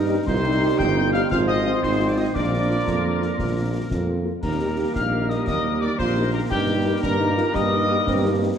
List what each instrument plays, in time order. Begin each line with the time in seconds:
Already playing: tuba G2, trombone section G3 D#4, euphonium D#4, woodwind section D#4 A#4
0.09 french horn section A#3 D#4 G4
0.26 tuba C2, trombone section G3 D#4, woodwind section D#4 C5, euphonium F4, trumpet section C5, piccolo C6, concert bass drum, snare, crash
0.45 french horn section C4 D#4 G4, euphonium D#4
0.62 french horn section C4 D#4 G4, euphonium G4
0.78 tuba G1, woodwind section D#4 C5, trumpet section G5, piccolo G6, concert bass drum, snare
0.97 french horn section C4 D#4 G4
1.13 french horn section C4 D#4 G4, trumpet section F5, piccolo F6, snare
1.31 tuba G#1, trombone section F3 C4, euphonium F4, woodwind section F4 C5, trumpet section F5, piccolo F6, concert bass drum, snare
1.48 french horn section C4 F4, trumpet section D#5, piccolo D#6
1.66 french horn section C4 F4
1.83 tuba G#1, euphonium D#4, woodwind section F4 C5, trumpet section C5, piccolo C6, concert bass drum, snare
2.00 french horn section C4 F4
2.08 trumpet section D5, piccolo D6
2.17 french horn section C4 F4, trumpet section D#5, piccolo D#6
2.34 tuba A#1, trombone section F3 A#3, euphonium D4, woodwind section F4 A#4, trumpet section D5, piccolo D6, concert bass drum, snare, crash
2.51 french horn section A#3 F4
2.69 french horn section A#3 F4
2.87 tuba F2, concert bass drum, snare
3.04 french horn section A#3 F4
3.21 french horn section A#3 F4, snare
3.38 tuba A#1, concert bass drum, snare
3.56 french horn section A#3 F4
3.73 french horn section A#3 F4
3.90 tuba F2, concert bass drum, snare
4.08 french horn section A#3 F4
4.25 french horn section A#3 F4
4.41 tuba D#2, trombone section G3 A#3, euphonium D#4, woodwind section G4 A#4, trumpet section A#4, piccolo A#5, concert bass drum, snare, crash
4.59 french horn section A#3 D#4 G4, euphonium G4
4.76 french horn section A#3 D#4 G4, euphonium G4
4.94 tuba A#1, euphonium D#4, trumpet section F5, piccolo F6, concert bass drum, snare
5.12 french horn section A#3 D#4 G4
5.29 french horn section A#3 D#4 G4, trumpet section D#5, piccolo D#6, snare
5.47 tuba D#2, euphonium G4, trumpet section D#5, piccolo D#6, concert bass drum, snare
5.65 french horn section A#3 D#4 G4
5.81 french horn section A#3 D#4 G4, trumpet section D5, piccolo D6
5.98 tuba A#1, euphonium F4, trumpet section C5, piccolo C6, concert bass drum, snare
6.17 french horn section A#3 D#4 G4
6.33 french horn section A#3 D#4 G4, trumpet section A#4, piccolo A#5
6.50 tuba G2, trombone section G3 A#3, euphonium D#4, trumpet section G4, woodwind section G4 A#4, piccolo G5, concert bass drum, snare, crash
6.68 french horn section A#3 D#4 G4
6.86 french horn section A#3 D#4 G4
7.01 tuba G2, euphonium D4, trumpet section A#4, piccolo A#5, concert bass drum, snare
7.20 french horn section A#3 D#4 G4, euphonium D#4
7.37 french horn section A#3 D#4 G4, euphonium F4, snare
7.53 tuba G2, euphonium G4, trumpet section D#5, piccolo D#6, concert bass drum, snare
7.70 french horn section A#3 D#4 G4, euphonium D#4
7.89 french horn section A#3 D#4 G4, euphonium G4
8.07 tuba G2, euphonium C4, concert bass drum, snare
8.24 french horn section A#3 D#4 G4, euphonium D4
8.41 french horn section A#3 D#4 G4, euphonium D#4